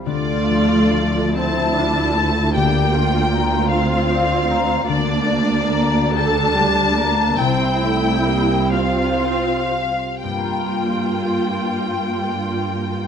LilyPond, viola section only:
\new Staff \with { instrumentName = "Viola section" } { \time 6/8 \key g \dorian \tempo 4. = 47 << { f'4. e'4. | g'8 f'8 f'2 | d'4. d'4. | e'4. f'4~ f'16 r16 |
f'2. | } \\ { a4. c'8 d'8 a8 | bes4. c'4. | bes4. a'8 g8 bes8 | c'8 a8 bes8 c'4~ c'16 r16 |
bes2. | } >> }